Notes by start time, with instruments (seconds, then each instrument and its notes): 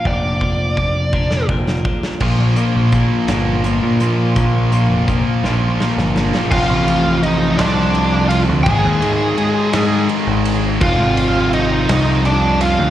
0.05 picked electric bass F1, clean electric guitar A#2 F3 A#3 D4 F4, lead electric guitar D5, kick
0.41 clean electric guitar A#3 D4 F4, kick
0.77 kick
1.13 clean electric guitar A#2 F3 A#3 D4 F4, kick
1.31 snare
1.49 picked electric bass F1, clean electric guitar F3 A#3 D4 F4, kick
1.67 snare
1.85 clean electric guitar A#3 D4 F4, kick
2.03 snare
2.20 picked electric bass A#1, clean electric guitar A#2 F3 A#3 D4 F4, distorted electric guitar A#2 F3 A#3, kick, crash
2.56 distorted electric guitar A#2 F3 A#3, clean electric guitar A#3 D4 F4, closed hi-hat
2.75 picked electric bass A#1
2.92 distorted electric guitar A#2 F3 A#3, clean electric guitar F3 A#3 D4 F4, kick, closed hi-hat
3.28 picked electric bass G1, distorted electric guitar A#2 F3 A#3, clean electric guitar A#2 F3 A#3 D4 F4, snare, closed hi-hat
3.64 distorted electric guitar A#2 F3 A#3, clean electric guitar F3 A#3 D4 F4, closed hi-hat
3.83 picked electric bass A#2
4.00 distorted electric guitar A#2 F3 A#3, closed hi-hat
4.36 picked electric bass A#1, clean electric guitar A#2 F3 A#3 D4 F4, distorted electric guitar A#2 F3 A#3, kick, closed hi-hat
4.71 distorted electric guitar A#2 F3 A#3, clean electric guitar A#3 D4 F4, closed hi-hat
4.90 picked electric bass F1
5.08 distorted electric guitar A#2 F3 A#3, clean electric guitar F3 A#3 D4 F4, kick, closed hi-hat
5.44 picked electric bass A#1, distorted electric guitar A#2 F3 A#3, clean electric guitar A#2 F3 A#3 D4 F4, snare
5.79 distorted electric guitar A#2 F3 A#3, clean electric guitar F3 A#3 D4 F4, snare
5.98 picked electric bass G1, snare
6.16 distorted electric guitar A#2 F3 A#3, snare
6.34 snare
6.51 picked electric bass F1, distorted electric guitar F2 C3 F3, lead electric guitar F4 F5, kick, crash
6.69 picked electric bass A1
6.88 ride
7.23 lead electric guitar D#4 D#5, ride
7.57 picked electric bass C2, distorted electric guitar C3 F3, lead electric guitar D4 D5, snare, ride
7.62 distorted electric guitar F2
7.95 ride
8.29 lead electric guitar F4 F5, ride
8.49 picked electric bass D2
8.63 picked electric bass G#1, distorted electric guitar G#2, lead electric guitar G#5, kick, ride
8.68 distorted electric guitar D#3 G#3, lead electric guitar G#4
8.85 picked electric bass D#2
9.02 picked electric bass G#2, ride
9.38 ride
9.54 lead electric guitar G5
9.73 picked electric bass G#2, distorted electric guitar D#3 G#3, snare, ride
9.77 distorted electric guitar G#2
10.09 ride
10.27 picked electric bass G#1
10.45 ride
10.81 picked electric bass F1, distorted electric guitar F2 C3 F3, lead electric guitar F4 F5, kick, ride
11.00 picked electric bass G#1
11.17 ride
11.53 lead electric guitar D#4 D#5, ride
11.89 picked electric bass C2, distorted electric guitar F2 C3 F3, snare, ride
12.25 lead electric guitar D4 D5, ride
12.61 lead electric guitar F4 F5, ride
12.79 picked electric bass D2